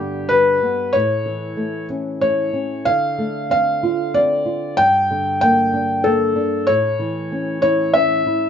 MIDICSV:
0, 0, Header, 1, 3, 480
1, 0, Start_track
1, 0, Tempo, 636267
1, 711, Time_signature, 3, 2, 24, 8
1, 6409, End_track
2, 0, Start_track
2, 0, Title_t, "Felt piano"
2, 0, Program_c, 0, 0
2, 0, Note_on_c, 0, 67, 75
2, 216, Note_on_c, 0, 71, 78
2, 245, Note_off_c, 0, 67, 0
2, 699, Note_on_c, 0, 73, 82
2, 718, Note_off_c, 0, 71, 0
2, 1397, Note_off_c, 0, 73, 0
2, 1670, Note_on_c, 0, 73, 72
2, 2153, Note_on_c, 0, 77, 84
2, 2174, Note_off_c, 0, 73, 0
2, 2638, Note_off_c, 0, 77, 0
2, 2649, Note_on_c, 0, 77, 80
2, 3126, Note_on_c, 0, 74, 75
2, 3145, Note_off_c, 0, 77, 0
2, 3599, Note_on_c, 0, 79, 94
2, 3624, Note_off_c, 0, 74, 0
2, 4072, Note_off_c, 0, 79, 0
2, 4083, Note_on_c, 0, 79, 86
2, 4556, Note_on_c, 0, 69, 77
2, 4579, Note_off_c, 0, 79, 0
2, 5030, Note_on_c, 0, 73, 85
2, 5052, Note_off_c, 0, 69, 0
2, 5737, Note_off_c, 0, 73, 0
2, 5748, Note_on_c, 0, 73, 80
2, 5987, Note_on_c, 0, 76, 76
2, 6000, Note_off_c, 0, 73, 0
2, 6409, Note_off_c, 0, 76, 0
2, 6409, End_track
3, 0, Start_track
3, 0, Title_t, "Nylon-string guitar"
3, 0, Program_c, 1, 24
3, 0, Note_on_c, 1, 43, 64
3, 0, Note_on_c, 1, 50, 52
3, 0, Note_on_c, 1, 55, 53
3, 0, Note_on_c, 1, 59, 45
3, 227, Note_off_c, 1, 55, 0
3, 236, Note_on_c, 1, 55, 47
3, 445, Note_off_c, 1, 50, 0
3, 465, Note_off_c, 1, 59, 0
3, 474, Note_on_c, 1, 59, 43
3, 684, Note_off_c, 1, 43, 0
3, 699, Note_off_c, 1, 55, 0
3, 705, Note_off_c, 1, 59, 0
3, 712, Note_on_c, 1, 45, 64
3, 948, Note_on_c, 1, 52, 48
3, 1182, Note_on_c, 1, 57, 50
3, 1432, Note_on_c, 1, 61, 45
3, 1666, Note_off_c, 1, 57, 0
3, 1675, Note_on_c, 1, 57, 51
3, 1888, Note_off_c, 1, 52, 0
3, 1902, Note_off_c, 1, 61, 0
3, 1911, Note_on_c, 1, 61, 49
3, 2132, Note_off_c, 1, 45, 0
3, 2147, Note_off_c, 1, 57, 0
3, 2151, Note_off_c, 1, 61, 0
3, 2161, Note_on_c, 1, 50, 59
3, 2401, Note_on_c, 1, 57, 53
3, 2640, Note_on_c, 1, 60, 42
3, 2889, Note_on_c, 1, 65, 53
3, 3114, Note_off_c, 1, 60, 0
3, 3123, Note_on_c, 1, 60, 49
3, 3340, Note_off_c, 1, 57, 0
3, 3351, Note_off_c, 1, 65, 0
3, 3360, Note_on_c, 1, 65, 42
3, 3580, Note_off_c, 1, 50, 0
3, 3593, Note_off_c, 1, 60, 0
3, 3598, Note_off_c, 1, 65, 0
3, 3609, Note_on_c, 1, 43, 60
3, 3852, Note_on_c, 1, 50, 50
3, 4094, Note_on_c, 1, 58, 48
3, 4328, Note_on_c, 1, 62, 49
3, 4560, Note_off_c, 1, 58, 0
3, 4569, Note_on_c, 1, 58, 51
3, 4778, Note_off_c, 1, 50, 0
3, 4787, Note_off_c, 1, 62, 0
3, 4796, Note_on_c, 1, 62, 44
3, 5013, Note_off_c, 1, 43, 0
3, 5030, Note_off_c, 1, 58, 0
3, 5032, Note_off_c, 1, 62, 0
3, 5044, Note_on_c, 1, 45, 71
3, 5275, Note_on_c, 1, 52, 53
3, 5521, Note_on_c, 1, 61, 51
3, 5758, Note_on_c, 1, 64, 52
3, 5981, Note_off_c, 1, 61, 0
3, 5990, Note_on_c, 1, 61, 53
3, 6204, Note_off_c, 1, 52, 0
3, 6226, Note_off_c, 1, 64, 0
3, 6235, Note_on_c, 1, 64, 46
3, 6409, Note_off_c, 1, 45, 0
3, 6409, Note_off_c, 1, 61, 0
3, 6409, Note_off_c, 1, 64, 0
3, 6409, End_track
0, 0, End_of_file